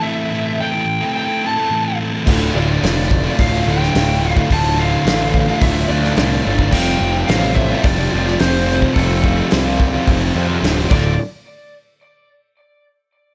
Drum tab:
CC |----------------|x---------------|----------------|x---------------|
HH |----------------|----o---o---o---|o---o---o---o---|----o---o---o---|
SD |----------------|----o------oo---|----o------oo---|----o------oo-o-|
BD |----------------|o-----o-o------o|o-----o-o------o|o-----o-o------o|

CC |--------------x-|----------------|
HH |o---o---o---o---|----------------|
SD |----o-------o---|----------------|
BD |o-o---o-o-----o-|----------------|